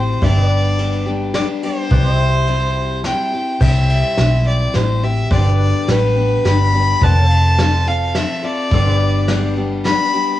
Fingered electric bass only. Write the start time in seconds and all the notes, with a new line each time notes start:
Already playing: A1
0.22 G1
1.91 C2
3.61 C2
4.18 B1
4.75 A1
5.31 G1
5.88 A1
6.45 G1
7.02 F1
8.72 G1